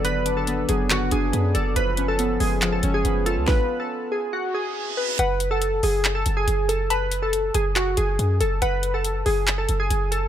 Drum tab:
HH |xxxxxxxx|xxxoxxxx|--------|xxxoxxxx|
CP |----x---|----x---|--------|----x---|
SD |--------|--------|o-------|--------|
BD |--------|--------|o-------|--------|

HH |xxxxxxxx|xxxoxxxx|
CP |----x---|----x---|
SD |--------|--------|
BD |--------|--------|